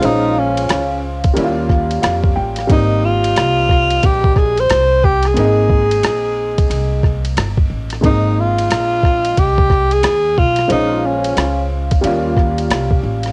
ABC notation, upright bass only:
X:1
M:4/4
L:1/16
Q:"Swing 16ths" 1/4=90
K:Ab
V:1 name="Upright bass" clef=bass
B,,,4 D,,3 z E,,4 F,,2 =A,,,2 | A,,,4 C,,4 B,,,4 C,,4 | A,,,4 B,,,4 C,,4 G,,,2 =A,,,2 | A,,,4 B,,,4 C,,4 E,,2 _C,,2 |
B,,,4 D,,4 E,,4 C,,2 =A,,,2 |]